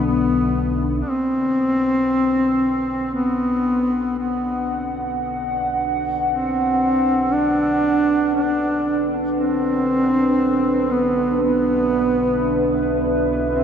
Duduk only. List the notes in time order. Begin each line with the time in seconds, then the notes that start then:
0.06 B3
1.02 D4
1.09 C4
3.14 B3
4.19 B3
6.30 C4
7.33 D4
8.35 D4
9.37 C4
10.91 B3
11.42 B3
13.54 C4